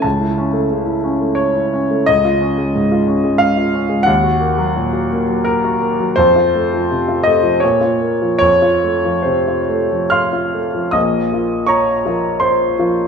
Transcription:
X:1
M:3/4
L:1/16
Q:1/4=85
K:A
V:1 name="Grand piano"
a6 z2 c4 | [K:Bbm] e8 f4 | g6 z2 B4 | c6 e2 d4 |
d4 c4 [fc'f']4 | [ee']4 [dbd']4 [cc']4 |]
V:2 name="Grand piano"
C,, E C A, C, E C A,2 E C A, | [K:Bbm] D,, F D A, A,, F D A,2 F D A, | E,, G B, G, B,, G B, G,2 G B, G, | F,, F =A, F, C, F A, F, B,, F B, F, |
F,, F =A, F, C, F A, F,2 F A, F, | [B,,,B,,]2 [F,B,F]4 [F,B,F]4 [F,B,F]2 |]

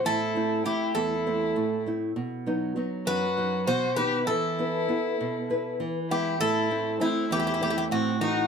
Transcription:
X:1
M:7/8
L:1/16
Q:1/4=99
K:none
V:1 name="Bouzouki"
A4 G2 A6 z2 | z6 B4 c2 B2 | A8- A2 z2 G2 | A4 E2 G/2 G/2 G/2 G/2 G/2 G/2 G/2 z/2 ^F2 F2 |]
V:2 name="Violin"
E4 E2 E6 z2 | z6 ^F4 F2 G2 | E8- E2 z2 E2 | E4 C2 E4 C2 ^D2 |]
V:3 name="Nylon-string guitar"
A,,2 [A,CE]2 [A,CE]2 E,,2 [A,CE]2 A,,2 [A,CE]2 | B,,2 [^F,B,^D]2 [F,B,D]2 ^F,,2 [F,D]2 B,,2 [^D,B,D]2 | E,2 [B,EB]2 [B,E]2 B,,2 [B,EB]2 E,2 [^G,B,E]2 | A,,2 [A,CE]2 [A,CE]2 E,,2 [A,CE]2 A,,2 [E,A,C]2 |]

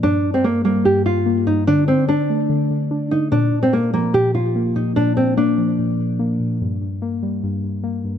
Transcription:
X:1
M:4/4
L:1/16
Q:1/4=146
K:Gm
V:1 name="Nylon-string guitar"
D3 C B,2 B,2 G2 F4 E2 | D2 C2 D8- D2 E2 | D3 C B,2 B,2 G2 F4 E2 | D2 C2 D12 |
z16 |]
V:2 name="Synth keys" clef=bass
G,,2 G,,2 B,2 G,2 G,,2 G,,2 B,2 G,,2 | D,4 D2 A,2 D,2 D,2 D2 D,2 | B,,2 B,,2 B,2 F,2 B,,2 B,,2 B,2 B,,2 | B,,2 B,,2 B,2 F,2 B,,2 B,,2 B,2 B,,2 |
G,,2 G,,2 B,2 G,2 G,,2 G,,2 B,2 G,,2 |]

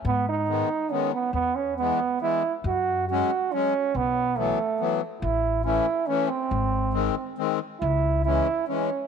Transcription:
X:1
M:3/4
L:1/16
Q:"Swing" 1/4=139
K:G#phr
V:1 name="Trombone"
B,2 D6 C2 B,2 | B,2 C2 B,4 E3 z | F4 F4 C4 | B,4 A,6 z2 |
E4 E4 C2 ^B,2- | ^B,8 z4 | E4 E4 C4 |]
V:2 name="Accordion" clef=bass
z4 [D,G,B,]2 z2 [D,G,B,]2 z2 | z4 [E,G,B,]2 z2 [E,G,B,]2 z2 | z4 [F,G,C]2 z2 [F,G,C]2 z2 | z4 [E,F,B,]2 z2 [E,F,B,]2 z2 |
z4 [E,A,C]2 z2 [E,A,C]2 z2 | z4 [D,G,^B,]2 z2 [D,G,B,]2 z2 | z4 [E,G,C]2 z2 [E,G,C]2 z2 |]
V:3 name="Upright bass" clef=bass
G,,8 z4 | E,,8 z4 | F,,8 z4 | B,,,8 z4 |
A,,,8 z4 | G,,,8 z4 | C,,8 z4 |]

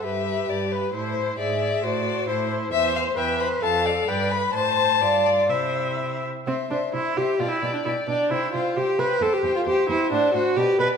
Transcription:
X:1
M:2/4
L:1/16
Q:1/4=132
K:Ador
V:1 name="Violin"
e4 d2 B2 | c4 e4 | d4 c2 z2 | [K:C] e2 f2 g2 b2 |
a2 f2 g2 b2 | a6 d2 | c6 z2 | e2 e2 e2 e2 |
g2 g2 g2 g2 | g2 g2 g2 g2 | g2 g2 g2 g2 | [K:Dmix] f2 f2 d2 d2 |]
V:2 name="Violin"
B2 B2 B2 B2 | c2 c2 d2 d2 | c2 c2 c2 c2 | [K:C] e2 c2 e2 c2 |
f2 d2 d2 B2 | c4 F4 | E6 z2 | c2 c2 c2 c2 |
d2 d2 d2 d2 | c2 c2 c2 c2 | c2 c2 c2 c2 | [K:Dmix] c2 c2 B2 B2 |]
V:3 name="Viola"
G8 | E4 ^G4 | F4 E4 | [K:C] c4 B4 |
A4 B4 | c4 d4 | e6 z2 | C2 D2 E2 G2 |
F E2 D E2 D2 | E2 F2 G2 B2 | A G2 F G2 E2 | [K:Dmix] D2 F2 G2 B2 |]
V:4 name="Cello" clef=bass
G,,4 G,,4 | A,,4 ^G,,4 | A,,4 A,,4 | [K:C] E,,4 E,,4 |
F,,4 G,,4 | A,,4 G,,4 | C,6 z2 | C,2 C,2 C,2 C,2 |
B,,2 B,,2 B,,2 B,,2 | C,2 C,2 C,2 C,2 | E,,2 E,,2 E,,2 E,,2 | [K:Dmix] A,,2 A,,2 B,,2 B,,2 |]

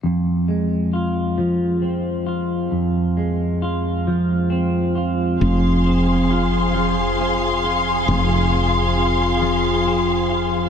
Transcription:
X:1
M:6/8
L:1/8
Q:3/8=45
K:Fm
V:1 name="String section"
z6 | z6 | [Afc']6- | [Afc']6 |]
V:2 name="Clean electric guitar"
F,, A, F F, C F | F,, A, F F, C F | F,, C F F, C F | F,, C F F, C F |]
V:3 name="Fretless electric bass" clef=bass
z6 | z6 | F,,,6 | F,,,6 |]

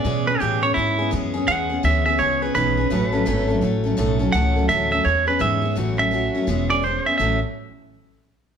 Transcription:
X:1
M:4/4
L:1/8
Q:"Swing" 1/4=168
K:A
V:1 name="Clean electric guitar"
d B =G c E2 z2 | f2 e e c B B2- | B4 z4 | f2 e e c B e2 |
z e4 d =c e | e z6 z |]
V:2 name="Steel-string acoustic guitar"
[E,G,B,CG] [B,CG] [E,G,B,CG] [B,CG] [G,B,CG] [B,CG] [E,G,B,CG] [B,CG] | [E,G,B,CG] [B,CG] [E,G,B,CG] [B,CG] [G,B,CG] [B,CG] [E,G,B,CG] [B,CG] | [A,,E,F,A,CA] [F,A,CA] [A,,E,F,A,CA] [F,A,CA] [F,A,CA] [F,A,CA] [A,,E,F,A,CA] [F,A,CA] | [A,,E,F,A,CA] [F,A,CA] [A,,E,F,A,CA] [F,A,CA] [G,B,CG] [B,CG] [E,G,B,CG] [B,CG] |
[A,,E,F,A,CF] [F,A,CF] [F,A,CF] [F,A,CF] [E,G,B,CG] [B,CG] [G,B,CG] [B,CG] | [A,,E,F,A,CA] z6 z |]
V:3 name="Upright bass" clef=bass
B,,2 A,,2 G,,2 F,,2 | E,,2 D,,2 C,,2 B,,,2 | A,,,2 G,,,2 A,,,2 B,,,2 | C,,2 D,,2 E,,2 G,,2 |
A,,,4 E,,,4 | A,,, z6 z |]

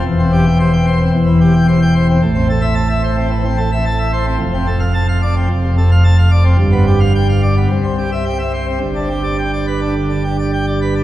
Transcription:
X:1
M:4/4
L:1/16
Q:1/4=110
K:Cmix
V:1 name="Pipe organ"
E,, C G g c g c C E,, E, G g c g c C | [K:Gmix] A,, C A e a e c C E, C A e a e c C | F,, C A f a f d C F,, C, A f a f d C | G,, B, G f g f d B, C, C G e g e c C |
G,, D G d g d B D D, D G d g d B D |]
V:2 name="Pipe organ" clef=bass
E,,,8 E,,,8 | [K:Gmix] A,,,16 | F,,,8 F,,,8 | G,,,8 C,,8 |
G,,,16 |]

